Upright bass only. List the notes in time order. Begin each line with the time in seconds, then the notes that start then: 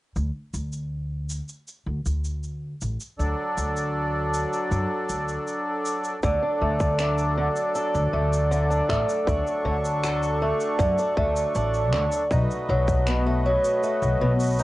0.16 D2
0.54 D2
1.86 D2
2.06 D2
2.82 A1
3.19 D2
3.57 D2
4.71 F#2
5.10 D2
6.23 D2
6.61 D2
7.95 D2
8.13 D2
8.89 A1
9.27 D2
9.65 D2
10.79 F#2
11.17 D2
11.55 A1
11.93 D2
12.31 B1
12.69 B1
14.02 B1
14.21 B1